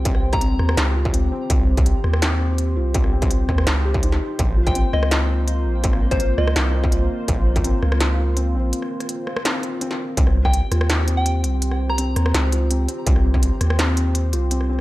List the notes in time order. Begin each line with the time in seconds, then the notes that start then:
Already playing: C2 C4 F4 G4 C5
0.05 kick, closed hi-hat
0.15 cross-stick
0.33 A#5, kick, cross-stick, closed hi-hat
0.41 C4, closed hi-hat
0.59 D#2, cross-stick
0.69 cross-stick
0.77 C#2, snare, closed hi-hat
0.96 F4
1.05 kick
1.14 C4, closed hi-hat
1.32 C4
1.50 C2, kick, closed hi-hat
1.77 kick, closed hi-hat
1.86 closed hi-hat
2.04 D#2, cross-stick
2.13 cross-stick
2.22 C4, snare, closed hi-hat
2.58 closed hi-hat
2.76 C2 F4
2.94 C4, kick, closed hi-hat
3.04 cross-stick
3.13 C4
3.22 kick, cross-stick, closed hi-hat
3.31 closed hi-hat
3.49 D#2, kick, cross-stick
3.58 cross-stick
3.67 C#2, snare, closed hi-hat
3.85 G4
3.94 kick
4.03 D#4, closed hi-hat
4.12 snare
4.39 A#1 A#3 F4, kick, closed hi-hat
4.57 F4
4.67 G5, kick, closed hi-hat
4.75 C4, closed hi-hat
4.93 C#2 C4 D#5, cross-stick
5.03 cross-stick
5.11 snare, closed hi-hat
5.48 closed hi-hat
5.66 A#1
5.84 C4, kick, closed hi-hat
5.93 cross-stick
6.11 C5, kick, cross-stick, closed hi-hat
6.20 closed hi-hat
6.38 C#2 F4 D#5, cross-stick
6.47 cross-stick
6.56 C2 C4, snare, closed hi-hat
6.74 C4
6.84 kick
6.92 closed hi-hat
7.28 A#1, kick, closed hi-hat
7.56 kick, closed hi-hat
7.64 C4, closed hi-hat
7.83 C#2, cross-stick
7.92 cross-stick
8.00 snare, closed hi-hat
8.19 F4
8.37 C4, closed hi-hat
8.55 A#1 C4
8.73 closed hi-hat
8.82 cross-stick
9.00 cross-stick, closed hi-hat
9.09 closed hi-hat
9.27 cross-stick
9.36 cross-stick
9.45 C4, snare, closed hi-hat
9.63 closed hi-hat
9.81 C4, closed hi-hat
9.91 snare
10.17 C2 C4 G4 C5, kick, closed hi-hat
10.27 cross-stick
10.45 G5, kick, cross-stick
10.54 closed hi-hat
10.72 D#2 F4, cross-stick, closed hi-hat
10.81 cross-stick
10.90 C4, snare, closed hi-hat
11.08 C4, closed hi-hat
11.17 G5
11.26 closed hi-hat
11.44 C2, closed hi-hat
11.62 closed hi-hat
11.71 cross-stick
11.89 A#5, cross-stick
11.98 C4, closed hi-hat
12.16 D#2, cross-stick, closed hi-hat
12.26 cross-stick
12.34 C#2, snare, closed hi-hat
12.52 F4, closed hi-hat
12.71 C4, closed hi-hat
12.89 C4, closed hi-hat
13.07 C2, kick, closed hi-hat
13.16 cross-stick
13.34 kick, cross-stick
13.43 closed hi-hat
13.61 D#2, cross-stick, closed hi-hat
13.70 cross-stick
13.79 C4, snare, closed hi-hat
13.97 closed hi-hat
14.15 closed hi-hat
14.33 C2 F4, closed hi-hat
14.51 C4, closed hi-hat
14.61 cross-stick
14.69 C4